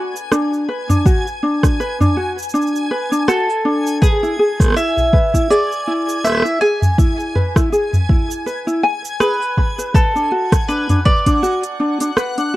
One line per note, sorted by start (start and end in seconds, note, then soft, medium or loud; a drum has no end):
0.00 0.14 F#4 medium
0.00 0.65 D5 medium
0.00 9.96 G#5 medium
0.00 9.96 G#6 medium
0.16 shaker medium
0.32 0.67 D4 medium
0.32 cross-stick medium
0.32 shaker medium
0.53 shaker soft
0.68 0.87 B4 medium
0.89 1.04 D4 medium
0.89 mid tom medium
0.89 shaker medium
1.06 1.25 F#4 medium
1.06 kick loud
1.06 shaker soft
1.27 shaker soft
1.43 1.78 D4 medium
1.63 kick medium
1.63 cross-stick medium
1.63 shaker medium
1.80 1.99 B4 medium
1.80 shaker soft
2.00 2.15 D4 medium
2.00 mid tom medium
2.00 shaker soft
2.17 2.36 F#4 medium
2.38 shaker medium
2.42 shaker soft
2.49 shaker soft
2.54 2.89 D4 medium
2.54 shaker medium
2.62 shaker soft
2.67 shaker soft
2.76 shaker soft
2.91 3.10 B4 medium
3.12 3.26 D4 medium
3.12 shaker medium
3.28 3.48 F#4 medium
3.28 4.01 A4 medium
3.28 cross-stick medium
3.28 shaker medium
3.50 shaker soft
3.65 4.00 D4 medium
3.87 shaker medium
4.02 4.78 G#4 medium
4.02 4.21 B4 medium
4.02 kick loud
4.02 shaker medium
4.23 4.37 E4 medium
4.23 shaker soft
4.39 4.59 G#4 medium
4.60 kick medium
4.60 cross-stick soft
4.60 shaker medium
4.62 cross-stick soft
4.64 cross-stick soft
4.66 cross-stick soft
4.68 cross-stick soft
4.70 cross-stick medium
4.72 cross-stick medium
4.74 5.12 E4 medium
4.74 5.46 E5 medium
4.74 cross-stick medium
4.74 shaker soft
4.97 mid tom medium
4.97 shaker soft
5.13 5.32 B4 medium
5.13 kick medium
5.34 5.49 E4 medium
5.34 kick soft
5.34 shaker medium
5.50 5.70 G#4 medium
5.50 6.27 D5 medium
5.50 shaker soft
5.72 shaker soft
5.87 6.23 E4 medium
6.09 shaker medium
6.24 6.43 B4 medium
6.24 6.61 E5 medium
6.24 cross-stick soft
6.24 shaker soft
6.27 cross-stick soft
6.30 cross-stick soft
6.32 cross-stick soft
6.35 cross-stick medium
6.37 cross-stick medium
6.40 cross-stick medium
6.42 6.60 E4 medium
6.42 cross-stick medium
6.42 shaker soft
6.61 6.81 G#4 medium
6.61 6.96 G#5 medium
6.82 mid tom medium
6.82 shaker medium
6.98 7.34 E4 medium
6.98 kick loud
6.98 shaker soft
7.20 shaker soft
7.35 7.54 B4 medium
7.35 mid tom medium
7.56 7.71 E4 medium
7.56 kick medium
7.56 cross-stick medium
7.56 shaker medium
7.72 7.92 G#4 medium
7.72 shaker soft
7.93 mid tom medium
7.93 shaker soft
8.09 8.45 E4 medium
8.09 kick medium
8.31 shaker medium
8.46 8.65 B4 medium
8.46 shaker soft
8.67 8.82 E4 medium
8.67 shaker soft
8.83 9.02 G#5 loud
9.05 shaker medium
9.20 9.39 G#4 medium
9.20 9.97 B4 medium
9.20 cross-stick medium
9.20 shaker medium
9.42 shaker soft
9.57 9.76 B5 medium
9.57 kick medium
9.78 9.93 B4 medium
9.78 shaker medium
9.94 10.71 A4 medium
9.94 10.13 B4 medium
9.94 12.56 F#5 medium
9.94 12.56 F#6 medium
9.94 kick loud
9.94 shaker medium
10.15 10.30 D4 medium
10.15 shaker soft
10.32 10.51 F#4 medium
10.52 kick medium
10.52 cross-stick medium
10.52 closed hi-hat medium
10.52 shaker medium
10.69 10.87 D4 medium
10.69 11.05 B4 medium
10.69 shaker medium
10.89 10.99 D4 medium
10.89 closed hi-hat soft
10.89 mid tom medium
10.89 shaker soft
11.05 11.24 B4 medium
11.05 12.50 D5 medium
11.05 kick medium
11.26 11.41 D4 medium
11.26 kick medium
11.26 closed hi-hat medium
11.26 shaker medium
11.43 11.62 F#4 medium
11.43 shaker soft
11.63 closed hi-hat soft
11.63 shaker soft
11.80 11.98 D4 medium
12.00 12.10 D4 medium
12.00 closed hi-hat medium
12.00 shaker medium
12.17 12.36 B4 medium
12.17 cross-stick medium
12.17 shaker medium
12.38 12.52 D4 medium
12.38 closed hi-hat soft
12.38 shaker soft